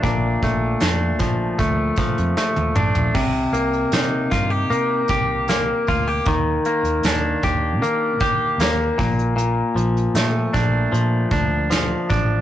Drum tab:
CC |----------------|x---------------|----------------|----------------|
HH |x-x-x-x-x-xx----|--xxx-x-x-x-x-o-|x-xxx-x-x-x-x-ox|x-xxx-x-x-x-x-x-|
SD |----o-------o---|----o-o-----o---|----o-------o---|----o-o-----o---|
T1 |-------------o--|----------------|----------------|----------------|
T2 |--------------o-|----------------|----------------|----------------|
FT |---------------o|----------------|----------------|----------------|
BD |o-o---o-o-o-----|o-----o---o---o-|o-----o---o---o-|------o---o---o-|